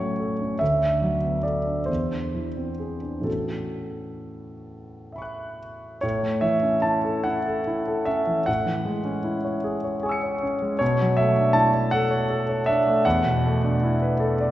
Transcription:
grand piano
Already playing: A2 F#3 C#4 C#5
0.00 A3
0.20 A4
0.41 C#4
0.59 D2 E5
0.81 D4
1.02 F#3
1.23 B3
1.43 A4 D5
1.66 D4
1.86 E2 C5
2.11 D4
2.35 E3
2.57 C4
2.80 G#4
3.02 D4
3.20 A2 E3 B3 C#4 F#4 A4
5.12 E5 B5
5.18 C#6 F#6
6.01 A2 C#5
6.23 A3
6.41 E3 E5
6.63 C#4
6.82 E4 A5
7.05 A4
7.24 E4 F#5
7.46 A4
7.67 E4
7.88 A4
8.05 C#4 E5
8.27 E3
8.46 A2 F#5
8.66 E3
8.85 G#3
9.05 C#4
9.24 E4
9.45 C#5
9.64 G#4
9.84 C#5
10.03 G#4 G#5 C#6
10.09 E6 C#7
10.23 C#5
10.43 C#4
10.62 G#3
10.79 B2 C#5
11.01 F#3
11.17 A3 E5
11.37 D4
11.53 E4 A5
11.74 C#5
11.91 A4 F#5
12.11 C#5
12.30 A4
12.49 C#5
12.66 D4 E5
12.87 A3
13.05 E2 F#5
13.25 B2
13.45 A3
13.63 D4
13.83 E4
14.02 B4
14.20 A4
14.41 D5

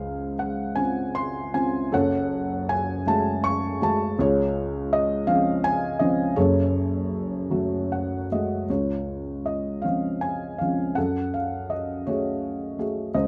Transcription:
felt piano
Already playing: C#2 G#4 C5 F5
0.39 F#5
0.76 C4 C#4 F4 G#5
1.15 C6
1.54 C4 C#4 F4 G#5
1.92 F#1 F#2 A4 C#5 F#5
2.69 G#5
3.06 G#3 A3 F#4 A5
3.44 C#6
3.80 G#3 A3 F#4 A5
4.19 C#2 F4 G#4 C#5
4.93 D#5
5.27 F3 C4 C#4 F5
5.64 G#5
5.99 F3 C4 C#4 D#5
6.36 F#1 F#2 G#4 A4 C#5
7.50 F#3 A3 F#4
7.92 F#5
8.32 G#3 A3 F#4 D#5
8.70 C#2 F4 C#5
9.46 D#5
9.82 F3 C4 C#4 F5
10.21 G#5
10.58 F3 C4 C#4 F5
10.95 F#2 A4 F#5
11.34 F5
11.70 D#5
12.07 A3 F#4 G#4 C#5
12.79 A3 F#4 G#4
13.14 C#2 C5 D#5

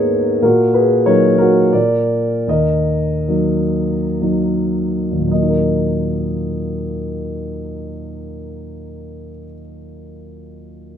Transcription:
grand piano
Already playing: G#2 A#3 B3 G#4 A#4 B4 C#5 D#5
0.42 A#2 F#4 A#4
0.74 G#4 B4
1.06 F#3 A#3 D#4 A#4 C#5
1.38 F#4 A#4
1.73 A#2 A#4 D5
2.48 D#2 A#4 D#5
3.28 F#3 A#3 D#4
4.22 F#3 A#3 D#4
5.11 D#2
5.19 A#2
5.27 F#3
5.31 A#3 D#5
5.42 D#4
5.49 A#4

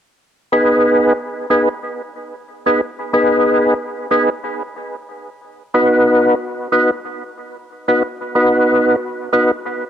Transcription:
tonewheel organ
0.52 B3 D#4 G#4 B4
1.50 B3 D#4 G#4 B4
2.66 B3 D#4 G#4 B4
3.13 B3 D#4 G#4 B4
4.11 B3 D#4 G#4 B4
5.74 B3 D#4 F#4 B4
6.72 B3 D#4 F#4 B4
7.88 B3 D#4 F#4 B4
8.35 B3 D#4 F#4 B4
9.33 B3 D#4 F#4 B4

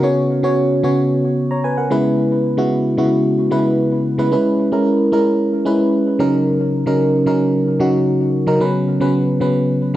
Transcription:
fm electric piano
0.03 C#3 B3 C#4 F#4 C#5
0.43 C#3 B3 C#4 F#4 C#5
0.83 C#3 B3 C#4 F#4 C#5
1.51 C#5 A#5
1.64 B4 G#5
1.77 A#4 F#5
1.90 C#3 G#3 B3 E4 B4
2.57 C#3 G#3 B3 E4 F#4
2.97 C#3 G#3 B3 E4 F#4
3.51 C#3 G#3 B3 E4 B4
4.18 C#3 G#3 B3 E4 B4
4.31 G#3 C#4 E4 B4
4.72 G#3 C#4 E4 A#4
5.12 G#3 C#4 E4 A#4
5.65 G#3 C#4 E4 B4
6.19 C#3 F#3 C#4 D#4 A#4
6.86 C#3 F#3 C#4 D#4 A#4
7.26 C#3 F#3 C#4 D#4 A#4
7.80 C#3 F#3 C#4 D#4 F#4
8.47 C#3 F#3 C#4 D#4 A#4
8.60 C#3 F#3 B3 C#4 B4
9.00 C#3 F#3 B3 C#4 B4
9.40 C#3 F#3 B3 C#4 B4

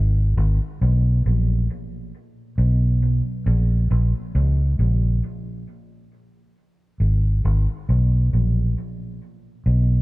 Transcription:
fingered electric bass
Already playing: G#1
0.37 G#1
0.81 B1
1.26 A#1
2.58 B1
3.46 A#1
3.91 A#1
4.35 C#2
4.79 A#1
7.00 G#1
7.45 G#1
7.89 B1
8.33 A#1
9.66 B1

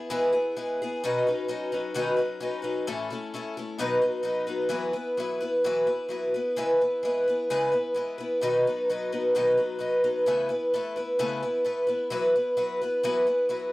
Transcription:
twelve-string acoustic guitar
Already playing: E4 G#4
0.10 E3 G#3 B3 E4 G#4
0.33 B3 E4 G#4
0.56 G#3 B3 E4 G#4
0.82 B3 E4 G#4
1.04 B2 D#3 F#3 C#4 D#4 B4
1.27 F#3 C#4 D#4 B4
1.48 F#3 C#4 D#4 B4
1.72 F#3 C#4 D#4 B4
1.94 B2 D#3 F#3 C#4 D#4 B4
2.17 F#3 C#4 D#4 B4
2.40 F#3 C#4 D#4 B4
2.62 F#3 C#4 D#4 B4
2.87 A2 E3 A3 C#4 E4 A4
3.10 A3 C#4 E4 A4
3.34 A3 C#4 E4 A4
3.57 A3 C#4 E4 A4
3.78 B2 D#3 F#3 B3 D#4 B4
4.02 F#3 B3 D#4 B4
4.23 F#3 B3 D#4 B4
4.47 F#3 B3 D#4 B4
4.69 E3 F#3 B3 E4 B4
4.93 B3 E4 B4
5.17 F#3 B3 E4 B4
5.41 B3 E4 B4
5.64 E3 F#3 B3 E4 B4
5.87 B3 E4 B4
6.09 F#3 B3 E4 B4
6.34 B3 E4 B4
6.56 C#3 G#3 B3 E4 B4
6.81 B3 E4 B4
7.03 G#3 B3 E4 B4
7.28 B3 E4 B4
7.50 C#3 G#3 B3 E4 B4
7.72 B3 E4 B4
7.94 G#3 B3 E4 B4
8.18 B3 E4 B4
8.41 B2 D#3 F#3 B3 D#4 B4
8.67 F#3 B3 D#4 B4
8.89 F#3 B3 D#4 B4
9.12 F#3 B3 D#4 B4
9.35 B2 D#3 F#3 B3 D#4 B4
9.57 F#3 B3 D#4 B4
9.79 F#3 B3 D#4 B4
10.04 F#3 B3 D#4 B4
10.26 C#3 A3 B3 E4 B4
10.49 B3 E4 B4
10.74 A3 B3 E4 B4
10.96 B3 E4 B4
11.19 C#3 A3 B3 E4 B4
11.43 B3 E4 B4
11.65 A3 B3 E4 B4
11.87 B3 E4 B4
12.10 E3 F#3 B3 E4 B4
12.36 B3 E4 B4
12.57 F#3 B3 E4 B4
12.82 B3 E4 B4
13.03 E3 F#3 B3 E4 B4
13.27 B3 E4 B4
13.49 F#3 B3 E4 B4

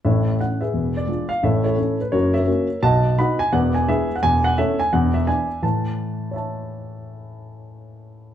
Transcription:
grand piano
0.05 A1 A2 A4 C#5 E5
0.40 A3 C#4 E4 F#5
0.61 G#4 B4 E5
0.74 E1 E2
0.97 D5
1.07 G#3 D4 F4
1.29 F5
1.43 A1 A2 A4 C#5 E5
1.64 E4 A4 C#5
1.77 A3 C#4 E4
2.01 B4
2.12 F#1 F#2 F#4 A#4 C#5
2.34 A#4 C#5 E5
2.47 A#3 C#4 F#4
2.82 B1 B2 D#5 F#5 A5
3.18 B3 D#4 F#4 D#5 F#5 B5
3.39 G#5
3.53 E1 E2 B4 D5 F#5
3.74 G#5
3.88 G#3 D4 E4 G#4 B4 E5
4.16 F#5
4.23 E1 E2 G#5
4.44 F#5
4.58 A3 C#4 E4 A4 C#5 E5
4.79 G#5
4.93 E1 E2 F#5
5.14 E5
5.27 B3 D4 E4 D5 E5 G#5
5.62 A2 E3 A5
6.31 C#5 E5
6.36 A5

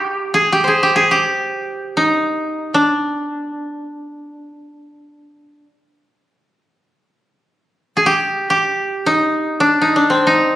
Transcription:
koto
Already playing: G4
0.34 G#4
0.53 G4
0.64 G#4 C5
0.83 G4
0.96 G#4
1.11 G4
1.97 D#4
2.74 D4
7.97 G#4
8.06 G4
8.50 G4
9.06 D#4
9.60 D4
9.82 D#4
9.96 D4
10.10 C4
10.27 D#4

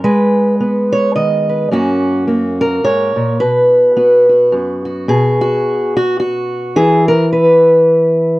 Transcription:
steel-string acoustic guitar
0.04 G#3 B4
0.60 B3
0.92 C#5
1.16 D#3 D#5
1.49 B4
1.71 F#2 A#3 C#4 F#4
2.27 A#3 F#4
2.61 A#4
2.84 G#2 C#5
3.16 A#2
3.40 B2 B4
3.97 B3 F#4
4.29 F#4
4.52 F#2
4.85 F#4
5.08 B2 G#4
5.41 F#4
5.97 F#4
6.20 F#4
6.76 E3 E4 G#4
7.08 A#4
7.32 B4

